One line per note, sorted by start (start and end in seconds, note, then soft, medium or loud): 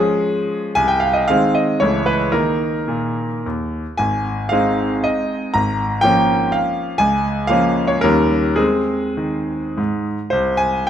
0.00 0.74 F3 soft
0.00 0.74 G#3 soft
0.00 0.74 C#4 soft
0.00 0.77 G#4 medium
0.75 1.26 C2 medium
0.75 0.88 G#5 medium
0.88 1.01 G5 medium
1.00 1.14 F5 medium
1.13 1.27 D#5 medium
1.28 1.77 D#3 soft
1.28 1.77 G#3 soft
1.28 1.78 C4 soft
1.28 1.55 F5 medium
1.55 1.80 D#5 medium
1.80 2.31 C#2 soft
1.80 2.28 E3 soft
1.80 2.29 A3 soft
1.80 2.29 E4 soft
1.80 2.06 C#5 medium
2.06 2.32 B4 medium
2.32 2.72 D#3 soft
2.32 2.78 A#3 soft
2.32 2.77 D#4 soft
2.32 3.45 A#4 medium
2.88 3.28 A#2 soft
3.46 3.83 D#2 soft
3.97 4.50 G#1 soft
3.97 4.51 G#5 medium
4.49 5.50 G#3 soft
4.49 5.50 C4 soft
4.49 5.51 D#4 soft
4.49 5.04 F5 medium
5.04 5.54 D#5 medium
5.54 6.02 G#1 soft
5.54 6.03 A#5 medium
6.01 6.96 F3 soft
6.01 6.97 A#3 soft
6.01 6.97 C#4 soft
6.01 6.53 G5 medium
6.52 7.00 F5 medium
6.98 7.48 C#2 medium
6.98 7.48 G#5 medium
7.47 7.99 F3 soft
7.47 7.99 A#3 soft
7.47 8.00 C#4 soft
7.47 7.89 F5 medium
7.87 8.02 C#5 medium
8.01 8.57 D#2 medium
8.01 8.54 D#3 soft
8.01 8.54 G3 soft
8.01 8.55 C#4 soft
8.01 8.57 A#4 medium
8.56 9.06 G#3 soft
8.56 9.05 C4 soft
8.56 10.06 G#4 medium
9.17 9.60 D#3 soft
9.78 10.17 G#2 soft
10.30 10.86 C2 soft
10.30 10.59 C5 medium
10.57 10.87 G#5 medium